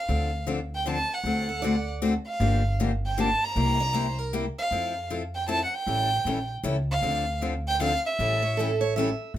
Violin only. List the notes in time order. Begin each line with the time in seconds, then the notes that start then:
Already playing: F5
0.75 G5
0.90 A5
1.14 F#5
2.27 F5
3.06 G5
3.20 A5
3.44 A#5
4.59 F5
5.35 G5
5.49 A5
5.64 F#5
5.74 G5
6.91 F5
7.68 G5
7.83 F5
8.06 E5